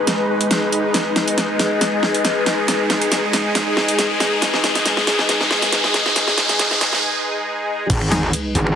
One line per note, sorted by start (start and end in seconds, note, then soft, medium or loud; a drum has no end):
0.00 7.86 G#3 medium
0.00 7.86 D#4 medium
0.00 7.03 G#4 medium
0.00 0.93 B4 medium
0.00 7.03 B4 medium
0.00 7.03 D#5 medium
0.00 riser medium
0.07 snare medium
0.07 closed hi-hat medium
0.41 closed hi-hat medium
0.51 snare medium
0.51 closed hi-hat medium
0.72 closed hi-hat soft
0.94 7.88 G#4 medium
0.94 snare medium
0.94 closed hi-hat medium
1.16 snare medium
1.16 closed hi-hat soft
1.28 closed hi-hat medium
1.38 snare medium
1.38 closed hi-hat medium
1.59 snare medium
1.59 open hi-hat medium
1.81 snare medium
1.81 closed hi-hat medium
2.03 snare medium
2.14 closed hi-hat soft
2.25 snare medium
2.25 closed hi-hat medium
2.46 snare medium
2.46 closed hi-hat medium
2.68 snare medium
2.68 closed hi-hat medium
2.90 snare medium
2.90 closed hi-hat medium
3.02 closed hi-hat medium
3.12 snare medium
3.12 closed hi-hat medium
3.33 snare medium
3.33 open hi-hat medium
3.55 snare medium
3.55 closed hi-hat medium
3.77 snare medium
3.88 closed hi-hat medium
3.99 snare medium
3.99 closed hi-hat medium
4.20 snare medium
4.20 closed hi-hat medium
4.42 snare medium
4.42 closed hi-hat medium
4.54 snare medium
4.64 snare loud
4.64 closed hi-hat medium
4.75 snare medium
4.75 closed hi-hat medium
4.86 snare medium
4.86 closed hi-hat medium
4.97 snare medium
5.07 snare loud
5.07 open hi-hat loud
5.19 snare medium
5.29 snare loud
5.29 closed hi-hat medium
5.41 snare medium
5.51 snare loud
5.62 snare medium
5.62 closed hi-hat medium
5.72 snare loud
5.72 closed hi-hat medium
5.84 snare medium
5.94 snare loud
5.94 closed hi-hat medium
6.06 snare medium
6.16 snare loud
6.16 closed hi-hat medium
6.28 snare medium
6.38 snare loud
6.38 closed hi-hat medium
6.49 snare medium
6.49 closed hi-hat medium
6.59 snare loud
6.59 closed hi-hat medium
6.71 snare medium
6.81 snare loud
6.81 open hi-hat loud
6.93 snare medium
7.90 8.32 G#1 loud
7.90 8.75 G#3 medium
7.90 8.75 D#4 medium
7.90 8.75 B4 medium
7.90 kick loud
7.90 closed hi-hat medium
7.90 crash loud
7.90 sub drop medium
8.01 finger snap medium
8.12 8.18 G#3 medium
8.12 8.18 D#4 medium
8.12 8.18 G#4 medium
8.12 snare medium
8.12 closed hi-hat medium
8.23 finger snap medium
8.33 closed hi-hat medium
8.55 8.75 G#1 loud
8.55 kick medium
8.55 open hi-hat medium
8.67 finger snap soft